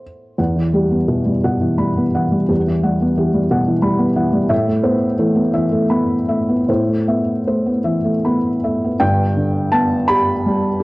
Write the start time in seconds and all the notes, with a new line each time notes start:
Already playing: E3 A3 B3 C5
0.38 E2 F#5
0.56 E3
0.73 G3 G4
0.91 B3
1.08 B2 E3
1.26 G3
1.44 B2 F#5
1.61 E3
1.78 G3 B5
1.97 B3
2.15 E3 F#5
2.32 G3
2.49 E2 G4
2.67 E3
2.83 G3 F#5
3.01 B3
3.17 E3 G4
3.34 G3
3.51 B2 F#5
3.68 E3
3.82 G3 B5
3.99 B3
4.16 E3 F#5
4.33 G3
4.49 A2 E5
4.67 A3
4.83 B3 C5
5.19 E3 A3
5.35 B3
5.54 E3 E5
5.72 A3
5.90 B3 B5
6.29 A3 E5
6.49 B3
6.68 A2 C5
6.88 A3
7.08 B3 E5
7.47 A3 C5
7.66 B3
7.84 E3 E5
8.04 A3
8.25 B3 B5
8.64 A3 E5
8.84 B3
9.00 G1 G2 G5
9.37 D3
9.72 B3 A5
10.08 G4 B5
10.46 G3
10.80 G4